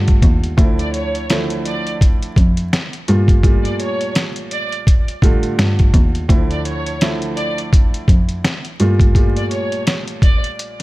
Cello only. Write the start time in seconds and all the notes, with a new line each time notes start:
Already playing: G2
0.23 D#2
0.58 D2
2.37 F2
3.08 G2
5.22 A2
5.58 G2
5.94 D#2
6.29 D2
8.08 F2
8.80 G2